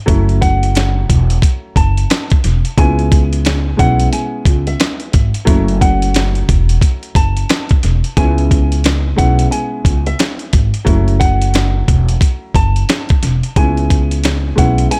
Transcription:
0.06 F#1 F#3 A3 C#4 E4, kick, closed hi-hat
0.29 closed hi-hat
0.41 F#5, kick, closed hi-hat
0.63 closed hi-hat
0.75 finger snap, snare, closed hi-hat
1.10 E1, kick, closed hi-hat
1.30 closed hi-hat
1.42 kick, closed hi-hat
1.76 F#1 A5, kick, closed hi-hat
1.97 closed hi-hat
2.10 finger snap, snare, closed hi-hat
2.30 kick, closed hi-hat
2.44 E1, snare, closed hi-hat
2.65 closed hi-hat
2.77 C#2 G#3 B3 C#4 E4 G#5, kick, closed hi-hat
2.99 closed hi-hat
3.12 kick, closed hi-hat
3.33 closed hi-hat
3.45 finger snap, snare, closed hi-hat
3.77 B1 G#3 B3 C#4 E4 F#5, kick, closed hi-hat
4.00 closed hi-hat
4.13 G#5, closed hi-hat
4.45 C#2, kick, closed hi-hat
4.67 E5, closed hi-hat
4.80 finger snap, snare, closed hi-hat
5.00 closed hi-hat
5.13 G#1, kick, closed hi-hat
5.34 closed hi-hat
5.45 F#1 F#3 A3 C#4 E4, kick, closed hi-hat
5.68 closed hi-hat
5.81 F#5, kick, closed hi-hat
6.02 closed hi-hat
6.14 finger snap, snare, closed hi-hat
6.35 closed hi-hat
6.49 E1, kick, closed hi-hat
6.69 closed hi-hat
6.81 kick, closed hi-hat
7.03 closed hi-hat
7.15 F#1 A5, kick, closed hi-hat
7.37 closed hi-hat
7.49 finger snap, snare, closed hi-hat
7.69 kick, closed hi-hat
7.83 E1, snare, closed hi-hat
8.04 closed hi-hat
8.17 C#2 G#3 B3 C#4 E4 G#5, kick, closed hi-hat
8.38 closed hi-hat
8.51 kick, closed hi-hat
8.72 closed hi-hat
8.84 finger snap, snare, closed hi-hat
9.16 B1 G#3 B3 C#4 E4 F#5, kick, closed hi-hat
9.39 closed hi-hat
9.51 G#5, closed hi-hat
9.85 C#2, kick, closed hi-hat
10.06 E5, closed hi-hat
10.19 finger snap, snare, closed hi-hat
10.39 closed hi-hat
10.53 G#1, kick, closed hi-hat
10.74 closed hi-hat
10.85 F#1 F#3 A3 C#4 E4, kick, closed hi-hat
11.08 closed hi-hat
11.20 F#5, kick, closed hi-hat
11.42 closed hi-hat
11.54 finger snap, snare, closed hi-hat
11.88 E1, kick, closed hi-hat
12.09 closed hi-hat
12.21 kick, closed hi-hat
12.55 F#1 A5, kick, closed hi-hat
12.76 closed hi-hat
12.89 finger snap, snare, closed hi-hat
13.09 kick, closed hi-hat
13.23 E1, snare, closed hi-hat
13.43 closed hi-hat
13.56 C#2 G#3 B3 C#4 E4 G#5, kick, closed hi-hat
13.77 closed hi-hat
13.90 kick, closed hi-hat
14.11 closed hi-hat
14.24 finger snap, snare, closed hi-hat
14.56 B1 G#3 B3 C#4 E4 F#5, kick, closed hi-hat
14.78 closed hi-hat
14.91 G#5, closed hi-hat

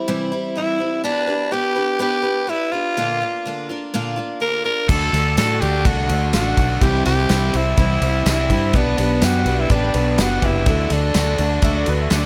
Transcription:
0.08 C3 E3 G3 C4 E4
0.32 G3 C4 E4
0.55 E3 G3 C4 E4
0.78 G3 C4 E4
1.04 B3 D4 G4 B4
1.27 D4 G4 B4
1.51 B3 D4 G4 B4
1.76 D4 G4 B4
1.99 B3 D4 G4 B4
2.22 D4 G4 B4
2.47 B3 D4 E4 G4 B4
2.72 D4 F4 G4 B4
2.97 A#2 D3 A#3 D4 F4
3.21 A#3 D4 F4
3.45 D3 A#3 D4 F4
3.69 A#3 D4 F4
3.94 A#2 D3 A#3 D4 F4
4.16 A#3 D4 F4
4.40 D3 A#3 D4 F4 A#4
4.64 A#3 D4 F4 A#4
4.88 D2 D3 A3 D4 F#4 A4 D5, kick, crash
5.13 D2 D3 A3 D4 F#4, snare, ride
5.37 A2 D3 A3 D4 F#4 A4 D5, snare, ride, tambourine
5.61 D2 A3 D4 F#4 G4, ride
5.85 C2 D3 A3 D4 F#4, kick, ride
6.09 D2 D3 A3 D4 F#4, ride
6.33 A1 D3 A3 D4 F#4, snare, ride, tambourine
6.57 B1 A3 D4 F#4, kick, ride
6.81 C2 C3 E3 G3 C4 E4 G4 C5, kick, ride
7.05 C2 G3 C4 E4 G4, snare, ride
7.29 C2 E3 G3 C4 E4 G4 C5, snare, ride, tambourine
7.54 C2 G3 C4 E4, ride
7.77 C2 C3 E3 G3 C4 E4, kick, ride
8.01 C2 G3 C4 E4, ride
8.26 C2 E3 G3 C4 E4, snare, ride, tambourine
8.49 G2 G3 C4 E4, kick, ride
8.73 B1 B3 D4 G4 B4, kick, ride
8.97 B1 B3 D4 G4 B4, ride
9.22 F#2 G3 B3 D4 F#4 G4 B4, snare, ride, tambourine
9.46 B1 D4 G4 B4, ride
9.60 E4
9.70 A1 B3 D4 G4 B4, kick, ride
9.94 B1 B3 D4 G4 B4, ride
10.18 F#1 B3 D4 F#4 G4 B4, snare, ride, tambourine
10.42 F#1 D4 E4 G4 B4, kick, ride
10.66 D2 D3 A3 D4 F#4 A4, kick, ride
10.90 D2 D3 D4 F#4 A4, snare, ride
11.14 D2 D3 A3 D4 F#4 A4, snare, ride, tambourine
11.38 D2 D4 F#4 A4, ride
11.62 D2 D3 D4 F#4 A4 E5, kick, ride
11.77 D5
11.86 D2 D3 D4 F#4 A4 B4, ride
12.01 E5
12.10 D2 D3 D4 F#4 A4, snare, ride, tambourine
12.16 D5

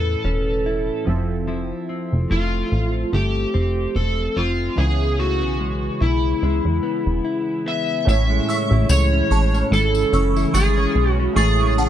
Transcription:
Already playing: E2 A2 E3 A3 C#4 E4 A4 B4
0.25 E1 C#4
0.66 E4
1.05 F1 F3 C4 E5
1.10 A4
1.47 F3 E4
1.89 C4
2.12 F1
2.30 F1 A3 F4
2.72 A1
3.13 G1 A3 G4
3.54 F1 C4
3.96 E1 A4
4.37 F1 C4 F4
4.76 C#2 C#3 E3 B3 C#4 E4 G#4
4.80 G#4
5.18 A3 F#4
5.42 B1 B3
5.59 G#3
6.01 B1 E4
6.43 C#2 G#3
6.65 E2
6.83 B3
7.06 E1
7.25 E4
7.66 B3 E5
8.05 A1 A2 C#3 E3 A3 C#4 E4 E5, tambourine
8.10 C#5
8.30 G#3
8.49 C#4 C#6 E6, tambourine
8.71 A1 E4
8.89 C#2 G#3 C#5, tambourine
9.13 C#4
9.31 A1 G#3 A5 C#6, tambourine
9.54 C#4, tambourine
9.72 G#1 A4, tambourine
9.95 tambourine
10.13 F#1 C#4 C#6 E6, tambourine
10.36 E4, tambourine
10.54 G#1 G#3 G#4 C#6 A6, tambourine
10.77 C#4
10.95 B1 G#3
11.12 F#4
11.20 C#4
11.33 A1 A3 C#4 E4 F#4 G#4 C#6
11.37 A2 C#5 A6, tambourine
11.61 G#3
11.78 C#4 F#5 A5, tambourine

